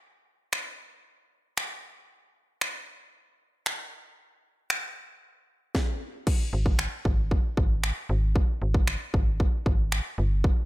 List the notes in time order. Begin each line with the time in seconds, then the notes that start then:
0.53 finger snap
1.57 finger snap
2.61 finger snap
3.66 finger snap
4.70 finger snap
5.75 kick, snare
6.27 kick, crash
6.53 G#1
6.66 kick
6.79 finger snap
7.05 G#1, kick
7.31 kick
7.57 G#1, kick
7.84 finger snap
8.09 G#1
8.36 kick
8.62 G#1
8.74 kick
8.87 finger snap
9.14 G#1, kick
9.40 kick
9.66 G#1, kick
9.92 finger snap
10.18 G1
10.44 kick